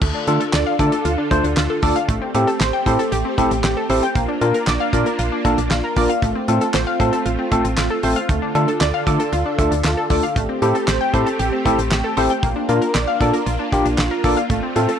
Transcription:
0.02 D2 D3 A3 D4 F4 A4, kick, crash
0.15 D4
0.27 D3 A3 D4 F4 A4, closed hi-hat
0.40 A4, closed hi-hat
0.53 D2 D5, snare, clap, closed hi-hat
0.66 F5
0.79 D3 A3 D4 F4 A4 D5, kick, closed hi-hat
0.92 A4, closed hi-hat
1.05 D2 F4, closed hi-hat
1.18 D4
1.31 D2 A3 D4 F4 C5, kick, closed hi-hat
1.44 D2 D4, closed hi-hat
1.57 D2 F4, snare, clap, closed hi-hat
1.70 A4
1.82 D2 A3 D4 F4 A4 D5, kick, open hi-hat
1.96 F5, closed hi-hat
2.09 A1 A3 C4 G4, kick, closed hi-hat
2.22 C4
2.34 A2 C4 E4 G4 A4, closed hi-hat
2.47 A4, closed hi-hat
2.60 A1 C5, snare, clap, closed hi-hat
2.73 G5
2.86 A2 C4 E4 G4 A4 C5, kick, closed hi-hat
2.99 A4, closed hi-hat
3.12 A1 G4, closed hi-hat
3.25 C4
3.38 A1 A3 C4 E4 G4 A4, kick, closed hi-hat
3.51 A1 C4, closed hi-hat
3.64 A1 G4, snare, clap, closed hi-hat
3.77 A4
3.90 A1 C4 E4 G4 A4 C5, open hi-hat
4.03 G5, closed hi-hat
4.15 A#1 A#3 D4 F4, kick, closed hi-hat
4.29 D4
4.41 A#2 A#3 D4 F4 A#4, closed hi-hat
4.54 A#4, closed hi-hat
4.67 A#1 D5, snare, clap, closed hi-hat
4.80 F5
4.93 A#2 A#3 D4 F4 A#4 D5, kick, closed hi-hat
5.06 A#4, closed hi-hat
5.19 A#1 F4, closed hi-hat
5.32 D4
5.45 A#1 A#3 D4 F4 A4, kick, closed hi-hat
5.58 A#1 D4, closed hi-hat
5.71 A#1 F4, snare, clap, closed hi-hat
5.84 A#4
5.96 A#1 A#3 D4 F4 A#4 D5, kick, open hi-hat
6.09 F5, closed hi-hat
6.22 A1 A3 C4, kick, closed hi-hat
6.35 C4
6.48 A2 A3 C4 F4 A4, closed hi-hat
6.61 A4, closed hi-hat
6.74 A1 C5, snare, clap, closed hi-hat
6.87 F5
7.00 A2 A3 C4 F4 A4 C5, kick, closed hi-hat
7.13 A4, closed hi-hat
7.26 A1 F4, closed hi-hat
7.39 C4
7.51 A1 A3 C4 F4 A4, kick, closed hi-hat
7.64 A1 C4, closed hi-hat
7.77 A1 F4, snare, clap, closed hi-hat
7.90 A4
8.03 A1 A3 C4 F4 A4 C5, open hi-hat
8.16 F5, closed hi-hat
8.29 D2 D3 A3 D4 A4, kick, closed hi-hat
8.42 D4
8.55 D3 A3 D4 F4 A4, closed hi-hat
8.68 A4, closed hi-hat
8.81 D2 D5, snare, clap, closed hi-hat
8.94 F5
9.07 D3 A3 D4 F4 A4 D5, kick, closed hi-hat
9.20 A4, closed hi-hat
9.33 D2 F4, closed hi-hat
9.46 D4
9.58 D2 A3 D4 F4 A4, kick, closed hi-hat
9.71 D2 D4, closed hi-hat
9.84 D2 F4, snare, clap, closed hi-hat
9.97 A4
10.10 D2 A3 D4 F4 A4 D5, kick, open hi-hat
10.23 F5, closed hi-hat
10.36 A1 A3 C4 G4, kick, closed hi-hat
10.49 C4
10.62 A2 C4 E4 G4 A4, closed hi-hat
10.75 A4, closed hi-hat
10.88 A1 C5, snare, clap, closed hi-hat
11.01 G5
11.14 A2 C4 E4 G4 A4 C5, kick, closed hi-hat
11.26 A4, closed hi-hat
11.39 A1 G4, closed hi-hat
11.52 C4
11.65 A1 A3 C4 E4 G4 A4, kick, closed hi-hat
11.78 A1 C4, closed hi-hat
11.91 A1 G4, snare, clap, closed hi-hat
12.04 A4
12.17 A1 C4 E4 G4 A4 C5, open hi-hat
12.30 G5, closed hi-hat
12.43 A#1 A#3 D4 F4, kick, closed hi-hat
12.56 D4
12.69 A#2 A#3 D4 F4 A#4, closed hi-hat
12.82 A#4, closed hi-hat
12.94 A#1 D5, snare, clap, closed hi-hat
13.07 F5
13.21 A#2 A#3 D4 F4 A4 D5, kick, closed hi-hat
13.33 A#4, closed hi-hat
13.46 A#1 F4, closed hi-hat
13.59 D4
13.72 A#1 A#3 D4 F4 G4, kick, closed hi-hat
13.85 A#1 D4, closed hi-hat
13.98 A#1 F4, snare, clap, closed hi-hat
14.11 A#4
14.24 A#1 A#3 D4 F4 A4 D5, kick, open hi-hat
14.37 F5, closed hi-hat
14.50 A1 A3 C4, kick, closed hi-hat
14.63 C4
14.76 A2 A3 C4 F4 A4, closed hi-hat
14.89 A4, closed hi-hat

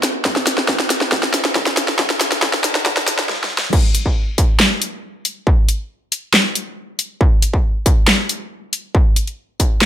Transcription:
0.03 snare, closed hi-hat
0.25 kick, snare
0.36 snare
0.47 snare, closed hi-hat
0.58 snare
0.69 kick, snare
0.80 snare
0.90 snare, closed hi-hat
1.01 snare
1.12 kick, snare
1.23 snare
1.34 snare, closed hi-hat
1.45 snare
1.55 kick, snare
1.67 snare
1.77 snare, closed hi-hat
1.88 snare
1.99 kick, snare
2.10 snare
2.21 snare, closed hi-hat
2.32 snare, closed hi-hat
2.42 kick, snare
2.53 snare
2.64 snare, closed hi-hat
2.75 snare
2.86 kick, snare
2.97 snare
3.08 snare, closed hi-hat
3.19 snare
3.29 snare
3.44 snare
3.58 snare
3.73 kick, crash
3.95 closed hi-hat
4.06 kick
4.38 kick, closed hi-hat
4.60 snare, clap
4.82 closed hi-hat
5.25 closed hi-hat
5.47 kick
5.69 closed hi-hat
6.12 closed hi-hat
6.34 snare, clap
6.55 closed hi-hat
6.99 closed hi-hat
7.21 kick
7.42 closed hi-hat
7.54 kick
7.86 kick, closed hi-hat
8.08 snare, clap
8.29 closed hi-hat
8.73 closed hi-hat
8.95 kick
9.16 closed hi-hat
9.27 closed hi-hat
9.60 kick, closed hi-hat
9.82 snare, clap

